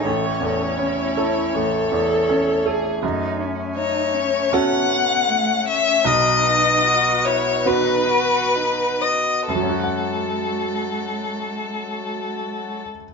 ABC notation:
X:1
M:4/4
L:1/16
Q:1/4=77
K:F#dor
V:1 name="Violin"
c12- c2 z2 | z4 c4 f6 e2 | d6 c2 B6 d2 | A16 |]
V:2 name="Viola"
A c A c E4 A6 G2 | z16 | z16 | z16 |]
V:3 name="Harmonium"
[A,Ec]16 | [A,cg]16 | [B,FB]16 | [F,Fc]16 |]
V:4 name="Cello"
C12 z4 | D2 C2 D2 C2 B,4 A,2 C2 | D4 F2 E2 D2 F2 D2 z2 | G,16 |]
V:5 name="Grand piano"
A,,,2 E,,2 C2 A2 A,,,2 E,,2 C2 A2 | F,,8 [CFA]8 | B,,,8 [B,FB]8 | [F,,F,CFf]16 |]